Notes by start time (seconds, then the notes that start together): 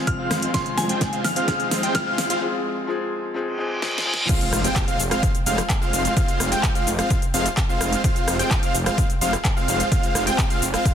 Already playing: F3 G#3 C4 G#4, riser
0.07 F6, kick, closed hi-hat
0.19 G#3 C4 F4 C5 F5
0.31 F1, cross-stick, snare, open hi-hat
0.42 closed hi-hat
0.53 F3 G#3 C4 G#4 C6, kick, snare, closed hi-hat
0.66 closed hi-hat
0.78 F1 G#5, snare, open hi-hat
0.89 G#3 C4 F4 C5 G5, closed hi-hat
1.01 kick, snare, closed hi-hat
1.13 G#3 C4 F4 C5 F5, closed hi-hat
1.24 F1 F6, snare, open hi-hat
1.36 G#3 C4 F4 C5 F5, closed hi-hat
1.47 F3 G#3 C4 G#4 C5, kick, snare, closed hi-hat
1.60 closed hi-hat
1.71 F1, snare, open hi-hat
1.83 G#3 C4 F4 C5 G5, closed hi-hat
1.95 F6, kick, snare, closed hi-hat
2.06 G#3 C4 F4 C5 F5
2.18 F1, snare, open hi-hat
2.30 G#3 C4 F4 C5 F5, closed hi-hat
2.40 F3 G#3 C4 G#4
2.87 F3 G#3 C4 G#4
3.34 F3 G#3 C4 G#4, reverse cymbal
3.58 F3 G#3 C4 G#4
3.81 F3 G#3 C4 G#4, snare
3.98 snare
4.04 F3 G#3 C4 G#4
4.14 snare
4.29 G#3 C4 F4 C5 F5, kick, closed hi-hat, crash, impact, shaker
4.41 closed hi-hat, shaker
4.53 F1, cross-stick, open hi-hat, shaker
4.64 G#3 C4 F4 C5 G5, closed hi-hat, shaker
4.76 kick, clap, closed hi-hat, shaker
4.88 G#3 C4 F4 C5 F5, closed hi-hat, shaker
4.99 F1, open hi-hat, shaker
5.11 G#3 C4 F4 C5 F5, cross-stick, closed hi-hat, shaker
5.23 kick, closed hi-hat, shaker
5.35 closed hi-hat, shaker
5.46 F1 G#3 C4 F4 C5 F5, open hi-hat, shaker
5.58 cross-stick, closed hi-hat, shaker
5.70 kick, clap, closed hi-hat, shaker
5.81 G#3 C4 F4 C5 F5, shaker
5.93 F1, open hi-hat, shaker
6.05 closed hi-hat, shaker
6.17 G#3 F4 F5, kick, closed hi-hat, shaker
6.28 closed hi-hat, shaker
6.40 F1, cross-stick, open hi-hat, shaker
6.52 G#3 C4 F4 C5 G5, closed hi-hat, shaker
6.64 kick, clap, closed hi-hat, shaker
6.75 G#3 C4 F4 C5 F5, closed hi-hat, shaker
6.87 F1, open hi-hat, shaker
6.99 G#3 C4 F4 C5 F5, cross-stick, closed hi-hat, shaker
7.10 kick, closed hi-hat, shaker
7.22 closed hi-hat, shaker
7.34 F1 G#3 C4 F4 C5 F5, open hi-hat, shaker
7.46 closed hi-hat, shaker
7.57 kick, clap, closed hi-hat, shaker
7.69 G#3 C4 F4 C5 F5, shaker
7.81 F1, cross-stick, open hi-hat, shaker
7.93 closed hi-hat, shaker
8.04 F5, kick, closed hi-hat, shaker
8.16 closed hi-hat, shaker
8.28 F1, cross-stick, open hi-hat, shaker
8.39 G#3 C4 F4 C5 G5, closed hi-hat, shaker
8.51 kick, clap, closed hi-hat, shaker
8.63 G#3 C4 F4 C5 F5, closed hi-hat, shaker
8.74 F1, open hi-hat, shaker
8.86 G#3 C4 F4 C5 F5, cross-stick, closed hi-hat, shaker
8.98 kick, closed hi-hat, shaker
9.10 closed hi-hat, shaker
9.21 F1 G#3 C4 F4 C5 F5, open hi-hat, shaker
9.33 cross-stick, closed hi-hat, shaker
9.45 kick, clap, closed hi-hat, shaker
9.56 G#3 C4 F4 C5 F5, shaker
9.68 F1, open hi-hat, shaker
9.80 closed hi-hat, shaker
9.92 C4 F4 C5 F5, kick, closed hi-hat, shaker
10.03 closed hi-hat, shaker
10.15 F1, cross-stick, open hi-hat, shaker
10.27 G#3 C4 F4 C5 G5, closed hi-hat, shaker
10.39 kick, clap, closed hi-hat, shaker
10.50 G#3 C4 F4 C5 F5, closed hi-hat, shaker
10.62 F1, open hi-hat, shaker
10.74 G#3 C4 F4 C5 F5, cross-stick, closed hi-hat, shaker
10.85 kick, closed hi-hat, shaker